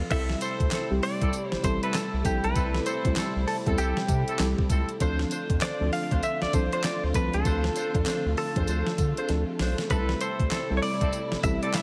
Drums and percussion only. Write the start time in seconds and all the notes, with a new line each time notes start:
0.11 kick, closed hi-hat, crash, tambourine
0.30 snare
0.41 closed hi-hat, tambourine
0.60 kick, closed hi-hat
0.71 snare, clap, closed hi-hat, tambourine
1.03 open hi-hat
1.22 kick, closed hi-hat
1.33 closed hi-hat, tambourine
1.52 snare
1.64 kick, closed hi-hat, tambourine
1.83 closed hi-hat
1.94 snare, clap, closed hi-hat, tambourine
2.25 kick, closed hi-hat, tambourine
2.44 closed hi-hat
2.56 kick, closed hi-hat, tambourine
2.74 snare
2.86 closed hi-hat, tambourine
3.05 kick, closed hi-hat
3.16 snare, clap, closed hi-hat, tambourine
3.48 open hi-hat
3.66 kick, closed hi-hat
3.78 closed hi-hat, tambourine
3.97 snare
4.08 kick, closed hi-hat, tambourine
4.28 closed hi-hat
4.39 snare, clap, closed hi-hat, tambourine
4.58 kick
4.70 kick, closed hi-hat, tambourine
4.89 closed hi-hat
5.00 kick, closed hi-hat, tambourine
5.19 snare
5.31 closed hi-hat, tambourine
5.50 kick, closed hi-hat
5.61 snare, clap, closed hi-hat, tambourine
5.93 open hi-hat
6.11 kick, closed hi-hat
6.23 closed hi-hat, tambourine
6.42 snare
6.53 kick, closed hi-hat, tambourine
6.72 closed hi-hat
6.84 snare, clap, closed hi-hat, tambourine
7.14 kick, closed hi-hat, tambourine
7.33 closed hi-hat
7.45 kick, closed hi-hat, tambourine
7.64 snare
7.76 closed hi-hat, tambourine
7.95 kick, closed hi-hat
8.06 snare, clap, closed hi-hat, tambourine
8.37 open hi-hat
8.56 kick, closed hi-hat
8.67 closed hi-hat, tambourine
8.87 snare
8.98 kick, closed hi-hat, tambourine
9.17 closed hi-hat
9.29 snare, closed hi-hat
9.59 snare, open hi-hat
9.78 snare, closed hi-hat
9.90 kick, closed hi-hat, tambourine
10.09 snare
10.21 closed hi-hat, tambourine
10.40 kick, closed hi-hat
10.51 snare, clap, closed hi-hat, tambourine
10.83 open hi-hat
11.01 kick, closed hi-hat
11.13 closed hi-hat, tambourine
11.32 snare
11.43 kick, closed hi-hat, tambourine
11.63 closed hi-hat
11.74 snare, clap, closed hi-hat, tambourine